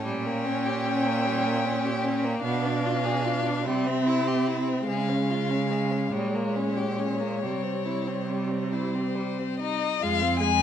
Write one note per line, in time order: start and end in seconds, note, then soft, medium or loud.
0.04 2.40 A#2 medium
0.04 0.28 G3 medium
0.04 2.40 C#4 medium
0.04 2.40 G5 medium
0.26 0.46 A#3 medium
0.45 0.67 C#4 medium
0.66 0.88 G4 soft
0.87 1.07 C#4 soft
1.06 1.27 A#3 soft
1.25 1.48 G3 medium
1.46 1.66 A#3 soft
1.64 1.86 C#4 medium
1.85 2.05 G4 soft
2.04 2.26 C#4 medium
2.25 2.44 A#3 medium
2.44 3.67 B2 medium
2.44 2.67 B3 medium
2.44 3.67 D4 soft
2.44 3.67 F5 soft
2.65 2.86 D4 soft
2.85 3.06 F4 soft
3.05 3.26 G#4 medium
3.25 3.48 F4 soft
3.46 3.65 D4 soft
3.65 4.88 C3 medium
3.65 3.88 G3 medium
3.65 4.88 C4 medium
3.65 4.88 E5 medium
3.86 4.08 C4 medium
4.07 4.29 E4 medium
4.27 4.49 G4 soft
4.48 4.69 E4 soft
4.68 4.89 C4 soft
4.89 6.11 C#3 medium
4.89 7.45 G#3 soft
4.89 5.10 G#3 medium
4.89 6.14 F5 soft
5.09 5.31 C#4 soft
5.30 5.52 F4 soft
5.51 5.72 C#4 soft
5.71 5.93 G#3 soft
5.91 6.12 C#4 soft
6.12 7.45 A#2 soft
6.12 6.37 G3 soft
6.12 8.74 C#5 soft
6.35 6.57 A#3 soft
6.56 6.78 C#4 soft
6.76 6.99 G4 soft
6.98 7.21 C#4 soft
7.20 7.42 A#3 soft
7.42 9.82 C3 soft
7.42 7.64 G3 soft
7.42 9.82 G3 soft
7.63 7.87 C4 soft
7.85 8.09 E4 soft
8.07 8.31 C4 soft
8.29 8.53 G3 soft
8.51 8.74 C4 soft
8.72 8.96 E4 soft
8.72 9.59 C5 soft
8.95 9.16 C4 soft
9.15 9.40 G3 soft
9.39 9.60 C4 soft
9.60 10.00 D#4 soft
9.60 10.04 D#5 medium
10.02 10.62 F2 medium
10.02 10.23 G#3 medium
10.02 10.40 F4 medium
10.02 10.39 F5 medium
10.22 10.42 C4 soft
10.40 10.62 G#3 medium
10.40 10.62 G#4 medium
10.40 10.62 G#5 medium